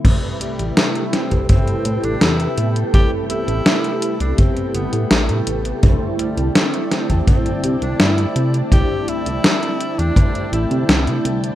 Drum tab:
CC |x---------------|----------------|----------------|----------------|
HH |x-xxxxxxxxxxxxxx|x-xxxxxxxxxxxxxx|x-xxxxxxxxxxxxxx|x-xxxxxxxxxxxxxx|
SD |----o-o-----o---|----o-------o---|----o-o-----o---|----o-------o---|
BD |o------oo-------|o-------o-------|o------oo-------|o-------o-------|